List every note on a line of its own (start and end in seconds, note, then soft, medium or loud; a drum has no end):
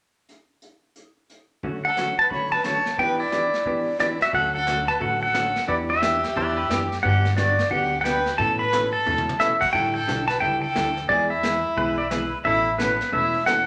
0.29 closed hi-hat medium
0.62 closed hi-hat soft
0.96 closed hi-hat medium
1.30 closed hi-hat medium
1.63 1.85 D3 medium
1.63 1.85 F#3 soft
1.63 1.85 A3 medium
1.63 1.85 C#4 medium
1.63 1.85 F#4 medium
1.63 brush sweep soft
1.63 kick soft
1.85 2.17 A4 medium
1.85 2.20 F#5 medium
1.97 2.09 D3 medium
1.97 2.09 F#3 medium
1.97 2.09 A3 medium
1.97 2.09 C#4 medium
1.97 2.09 F#4 medium
1.97 snare medium
1.97 hi-hat pedal medium
2.19 2.31 B4 medium
2.19 2.30 A5 medium
2.30 2.53 D3 soft
2.30 2.53 F#3 medium
2.30 2.53 A3 medium
2.30 2.53 C#4 medium
2.30 2.53 F#4 medium
2.30 2.51 C#5 medium
2.30 2.52 B5 medium
2.30 brush sweep soft
2.30 kick soft
2.52 2.64 B4 medium
2.52 2.64 A5 loud
2.64 2.76 D3 medium
2.64 2.77 F#3 medium
2.64 2.77 A3 medium
2.64 2.77 C#4 medium
2.64 2.77 F#4 medium
2.64 2.96 C#5 medium
2.64 3.00 A5 medium
2.64 snare medium
2.64 hi-hat pedal medium
2.86 snare soft
2.98 3.20 E3 medium
2.98 3.20 B3 medium
2.98 3.21 D4 medium
2.98 3.21 G4 medium
2.98 3.18 B4 medium
2.98 3.21 G5 medium
2.98 brush sweep soft
2.98 kick soft
3.19 3.96 E4 medium
3.19 3.99 D5 medium
3.32 3.44 E3 medium
3.32 3.44 B3 medium
3.32 3.44 D4 medium
3.32 3.44 G4 medium
3.32 snare soft
3.32 hi-hat pedal medium
3.54 snare soft
3.66 3.88 E3 soft
3.66 3.88 B3 medium
3.66 3.88 D4 soft
3.66 3.88 G4 medium
3.66 brush sweep soft
3.66 kick soft
3.99 4.11 E3 medium
3.99 4.11 B3 medium
3.99 4.11 D4 medium
3.99 4.19 E4 medium
3.99 4.11 G4 medium
3.99 4.06 D5 medium
3.99 snare soft
3.99 hi-hat pedal medium
4.21 4.34 F#4 medium
4.21 4.34 E5 medium
4.21 snare soft
4.33 4.87 D2 medium
4.33 4.55 D3 medium
4.33 4.55 F#3 medium
4.33 4.55 A3 medium
4.33 4.55 C#4 medium
4.33 4.55 F#4 medium
4.33 4.53 A4 medium
4.33 4.54 F#5 medium
4.33 brush sweep soft
4.33 kick soft
4.53 4.86 A4 medium
4.53 4.90 F#5 medium
4.67 4.79 D3 medium
4.67 4.79 F#3 medium
4.67 4.79 A3 medium
4.67 4.79 C#4 medium
4.67 4.79 F#4 medium
4.67 snare medium
4.67 hi-hat pedal medium
4.87 5.01 B4 medium
4.87 5.01 A5 loud
4.99 5.55 A1 medium
4.99 5.22 D3 medium
4.99 5.22 F#3 medium
4.99 5.22 A3 medium
4.99 5.23 C#4 medium
4.99 5.23 F#4 medium
4.99 5.19 A4 medium
4.99 5.21 F#5 medium
4.99 brush sweep soft
4.99 kick soft
5.20 5.64 A4 medium
5.20 5.70 F#5 medium
5.34 5.46 D3 medium
5.34 5.46 F#3 medium
5.34 5.46 A3 medium
5.34 5.46 C#4 medium
5.34 5.46 F#4 medium
5.34 snare medium
5.34 hi-hat pedal medium
5.56 snare soft
5.68 6.23 E2 medium
5.68 5.90 E3 medium
5.68 5.90 B3 medium
5.68 5.90 D4 medium
5.68 5.77 E4 medium
5.68 5.90 G4 medium
5.68 5.74 D5 medium
5.68 brush sweep soft
5.68 kick soft
5.89 6.87 G4 medium
5.89 6.87 E5 loud
6.02 6.14 E3 medium
6.02 6.14 B3 medium
6.02 6.14 D4 medium
6.02 6.14 G4 medium
6.02 snare medium
6.02 hi-hat pedal medium
6.24 snare soft
6.36 6.65 E2 medium
6.36 6.58 E3 medium
6.36 6.58 B3 medium
6.36 6.58 D4 medium
6.36 6.58 G4 medium
6.36 6.56 B4 medium
6.36 6.57 D5 medium
6.36 brush sweep soft
6.36 kick soft
6.57 6.69 G4 medium
6.57 6.70 B4 medium
6.70 6.99 F#2 medium
6.70 6.81 E3 medium
6.70 6.82 B3 medium
6.70 6.82 D4 medium
6.70 6.97 G4 loud
6.70 6.82 G4 medium
6.70 snare medium
6.70 hi-hat pedal medium
6.92 snare soft
7.02 7.58 G2 medium
7.02 7.25 D3 medium
7.02 7.25 F#3 medium
7.02 7.25 B3 medium
7.02 7.26 D4 medium
7.02 7.35 G4 medium
7.02 7.26 G4 medium
7.02 7.38 F#5 loud
7.02 brush sweep soft
7.02 kick soft
7.25 snare soft
7.36 7.49 D3 medium
7.36 7.49 F#3 medium
7.36 7.49 B3 medium
7.36 7.49 D4 medium
7.36 7.68 F#4 medium
7.36 7.50 G4 medium
7.36 7.72 D5 medium
7.36 snare medium
7.36 hi-hat pedal medium
7.59 snare soft
7.70 8.26 D2 medium
7.70 7.92 D3 medium
7.70 7.93 F#3 medium
7.70 7.93 B3 medium
7.70 7.93 D4 medium
7.70 7.98 G4 medium
7.70 7.93 G4 medium
7.70 8.00 F#5 medium
7.70 brush sweep soft
7.70 kick soft
8.01 8.16 D3 medium
8.01 8.16 F#3 medium
8.01 8.04 A4 medium
8.01 8.06 F#5 medium
8.01 8.40 G5 medium
8.05 8.16 B3 medium
8.05 8.17 D4 medium
8.05 8.17 G4 medium
8.05 8.37 B4 medium
8.05 snare medium
8.05 hi-hat pedal medium
8.26 snare soft
8.38 8.93 A2 medium
8.38 8.60 B2 medium
8.38 8.60 E3 medium
8.38 8.60 A3 medium
8.38 8.61 C#4 medium
8.38 8.57 A4 medium
8.38 8.61 A4 medium
8.38 8.59 A5 medium
8.38 brush sweep soft
8.38 kick soft
8.58 8.90 B4 medium
8.58 8.92 B5 loud
8.72 8.84 B2 medium
8.72 8.84 E3 medium
8.72 8.84 A3 medium
8.72 8.84 C#4 medium
8.72 8.85 A4 medium
8.72 snare medium
8.72 hi-hat pedal medium
8.92 9.36 A4 medium
8.92 9.41 A5 loud
9.06 9.61 E2 medium
9.06 9.28 B2 medium
9.06 9.28 E3 medium
9.06 9.28 A3 medium
9.06 9.28 C#4 medium
9.06 9.28 A4 medium
9.06 mid tom soft
9.18 mid tom medium
9.29 mid tom medium
9.38 9.52 B2 medium
9.38 9.52 E3 medium
9.38 9.52 A3 medium
9.38 9.52 C#4 medium
9.38 9.58 E4 medium
9.38 9.52 A4 medium
9.38 9.62 E5 medium
9.38 snare medium
9.38 hi-hat pedal medium
9.59 9.74 F#4 medium
9.59 9.72 F#5 medium
9.59 kick medium
9.59 crash medium
9.72 10.01 A2 medium
9.72 9.95 D3 medium
9.72 9.96 G3 medium
9.72 9.95 D4 medium
9.72 9.96 E4 medium
9.72 9.93 A4 medium
9.72 9.96 A4 medium
9.72 9.93 G5 loud
9.72 brush sweep soft
9.72 kick soft
9.94 10.26 A4 medium
9.94 10.27 G5 medium
10.08 10.37 B1 medium
10.08 10.19 D3 medium
10.08 10.20 G3 medium
10.08 10.20 D4 medium
10.08 10.20 E4 medium
10.08 10.20 A4 medium
10.08 snare medium
10.08 hi-hat pedal soft
10.28 10.40 B4 medium
10.28 10.40 A5 medium
10.28 snare soft
10.40 10.71 C#2 medium
10.40 10.63 D3 medium
10.40 10.63 G3 medium
10.40 10.63 D4 medium
10.40 10.63 E4 medium
10.40 10.61 A4 medium
10.40 10.63 A4 medium
10.40 10.60 G5 loud
10.40 brush sweep medium
10.40 kick soft
10.62 11.06 A4 medium
10.62 11.10 G5 loud
10.75 11.05 D2 medium
10.75 10.87 D3 medium
10.75 10.87 G3 medium
10.75 10.87 D4 medium
10.75 10.87 E4 medium
10.75 10.88 A4 medium
10.75 snare medium
10.75 hi-hat pedal medium
10.97 snare soft
11.09 11.64 E2 medium
11.09 11.31 E3 medium
11.09 11.31 G#3 medium
11.09 11.31 B3 medium
11.09 11.31 E4 medium
11.09 11.30 G#4 medium
11.09 11.31 G#4 medium
11.09 11.31 D5 medium
11.09 brush sweep soft
11.09 kick soft
11.29 12.31 E4 medium
11.29 12.32 E5 loud
11.43 11.55 E3 medium
11.43 11.55 G#3 medium
11.43 11.55 B3 medium
11.43 11.55 E4 medium
11.43 11.55 G#4 medium
11.43 snare medium
11.43 hi-hat pedal medium
11.77 12.31 B1 medium
11.77 11.98 E3 medium
11.77 11.99 G#3 medium
11.77 11.99 B3 medium
11.77 11.99 E4 medium
11.77 11.99 G#4 medium
11.77 11.97 B4 medium
11.77 brush sweep soft
11.77 kick soft
11.98 12.10 D5 medium
12.11 12.22 E3 medium
12.11 12.23 G#3 medium
12.11 12.23 B3 medium
12.11 12.23 E4 medium
12.11 12.23 G#4 medium
12.11 12.38 B4 medium
12.11 snare medium
12.11 hi-hat pedal medium
12.44 12.99 A1 loud
12.44 12.67 B2 medium
12.44 12.67 E3 medium
12.44 12.67 A3 medium
12.44 12.67 C#4 medium
12.44 12.76 E4 medium
12.44 12.67 A4 medium
12.44 12.80 E5 medium
12.44 brush sweep soft
12.44 kick soft
12.77 12.90 B2 medium
12.77 12.90 E3 medium
12.77 12.90 A3 medium
12.77 13.09 B3 medium
12.77 12.90 C#4 medium
12.77 12.91 A4 medium
12.77 13.14 B4 medium
12.77 snare medium
12.77 hi-hat pedal medium
13.01 snare soft
13.12 13.67 E1 medium
13.12 13.34 B2 medium
13.12 13.34 E3 medium
13.12 13.34 A3 medium
13.12 13.34 C#4 medium
13.12 13.44 E4 medium
13.12 13.34 A4 medium
13.12 13.46 E5 medium
13.12 brush sweep medium
13.12 kick soft
13.46 13.58 B2 medium
13.46 13.58 E3 medium
13.46 13.58 A3 medium
13.46 13.58 C#4 medium
13.46 13.66 A4 medium
13.46 13.58 A4 medium
13.46 13.67 F#5 medium
13.46 snare medium
13.46 hi-hat pedal medium